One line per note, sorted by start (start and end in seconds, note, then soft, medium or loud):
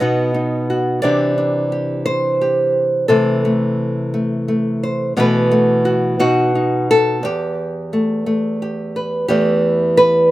0.00 1.03 B2 medium
0.00 0.99 B3 soft
0.00 0.33 D#4 soft
0.00 0.69 F#4 soft
0.00 1.01 D#5 loud
0.34 0.99 D#4 soft
0.70 0.99 F#4 soft
1.02 3.05 C3 medium
1.02 3.09 E3 soft
1.02 1.37 D4 soft
1.02 1.71 G4 soft
1.02 2.05 D5 medium
1.38 3.06 D4 soft
1.72 2.40 G4 soft
2.06 3.09 C5 medium
2.41 3.06 G4 soft
3.08 5.12 C3 medium
3.08 5.16 E3 soft
3.08 3.44 A3 soft
3.08 5.15 A4 medium
3.45 4.13 A3 soft
4.14 4.47 A3 soft
4.48 5.17 A3 soft
4.83 5.13 C5 soft
5.17 6.18 B2 medium
5.17 6.20 E3 medium
5.17 5.50 A3 medium
5.17 5.84 F#4 medium
5.17 6.20 B4 medium
5.51 6.20 A3 medium
5.85 6.15 F#4 medium
6.20 7.23 B2 medium
6.20 6.54 D#4 soft
6.20 6.89 F#4 medium
6.55 7.19 D#4 soft
6.91 7.24 A4 medium
7.23 9.28 E2 medium
7.23 8.61 G4 medium
7.93 8.25 A3 soft
8.26 9.29 A3 soft
8.62 9.26 G4 soft
8.96 9.26 B4 soft
9.28 10.31 E2 medium
9.28 10.31 E3 medium
9.28 10.31 A3 soft
9.28 10.31 G4 medium
9.97 10.31 B4 medium